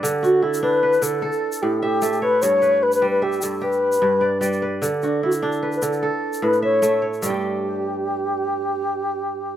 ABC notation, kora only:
X:1
M:12/8
L:1/8
Q:3/8=100
K:Glyd
V:1 name="Kora"
[Bd] F E2 B2 A3 e e c- | c B3 e2 G3 d d B- | B F E2 B2 A3 e e c- | c z8 z3 |]
V:2 name="Kora" clef=bass
D,2 z D2 D, z2 A,,2 A,2 | G,,2 z G,2 G,,2 z G,,2 G,2 | D,2 z D2 D, z2 A,,2 A,2 | [G,,G,G]12 |]